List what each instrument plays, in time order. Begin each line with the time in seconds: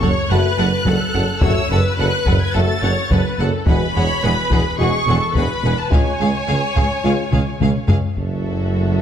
Already playing: violin section C#6
0.01 tuba F#1, double bass section F#1, cello section F#2, violin section A4 F#5, viola section C#5, taiko
0.29 double bass section F#1, tuba F#1, cello section F#2, french horn section A3 F#4, violin section A4 F#5 F#6, viola section B4
0.58 tuba F#1, double bass section F#1, cello section F#2, violin section A4 F#5
0.85 tuba F#1, double bass section F#1, cello section F#2, violin section A4 F#5, viola section A4, taiko
1.14 tuba F#1, double bass section F#1, cello section F#2, violin section A4 F#5
1.41 tuba F#1, double bass section F#1, cello section F#2, french horn section A3 F#4, violin section A4 F#5 E6, viola section C#5, taiko
1.70 tuba F#1, double bass section F#1, cello section F#2, violin section A4 F#5, viola section B4
1.98 tuba F#1, double bass section F#1, cello section F#2, violin section A4 F#5 F#6
2.26 tuba F#1, double bass section F#1, cello section F#2, violin section A4 F#5, taiko
2.42 violin section G#6
2.54 tuba F#1, double bass section F#1, cello section F#2, french horn section A3 F#4, violin section A4 F#5 A6, viola section A4
2.82 tuba F#1, double bass section F#1, cello section F#2, violin section A4 F#5, viola section C#5
3.10 tuba F#1, double bass section F#1, cello section F#2, violin section A4 F#5, viola section B4, taiko
3.39 double bass section F#1, tuba F#1, cello section F#2, viola section A4, violin section A4 F#5
3.65 double bass section E1, tuba E1, cello section E2, french horn section G#3 F#4, violin section G#4 B5, viola section B4, taiko
3.69 violin section F#5
3.95 tuba E1, double bass section E1, cello section E2, violin section G#4 F#5, viola section C#5
4.23 double bass section E1, tuba E1, cello section E2, violin section G#4 F#5, viola section B4
4.51 double bass section E1, tuba E1, cello section E2, violin section G#4 F#5, taiko
4.78 tuba E1, double bass section E1, cello section E2, french horn section G#3 F#4, viola section G#4, violin section G#4 F#5 C#6
5.07 double bass section E1, tuba E1, cello section E2, violin section G#4 F#5, viola section A4
5.35 double bass section E1, tuba E1, cello section E2, violin section G#4 F#5 B5, viola section B4, taiko
5.64 tuba E1, double bass section E1, cello section E2, violin section G#4 F#5
5.79 violin section A5
5.90 tuba C#2, double bass section C#2, cello section C#2, french horn section G#3 F4, violin section G#4 F5 G#5, viola section C#5, taiko
6.20 tuba C#2, double bass section C#2, cello section C#2, violin section G#4 F5
6.48 double bass section C#2, tuba C#2, cello section C#2, violin section G#4 F5
6.76 double bass section C#2, tuba C#2, cello section C#2, violin section G#4 F5, taiko
7.04 double bass section C#2, tuba C#2, cello section C#2, french horn section G#3 F4, violin section G#4 F5
7.32 double bass section C#2, cello section C#2, tuba C#2, violin section G#4 F5, taiko low-mid
7.60 cello section C#2, tuba C#2, double bass section C#2, violin section G#4 F5, taiko low-mid
7.88 tuba C#2, cello section C#2, double bass section C#2, violin section G#4 F5, taiko low
8.16 double bass section F#1, tuba F#1, cello section F#2, french horn section A3 E4, viola section F#4, violin section A4 E5, taiko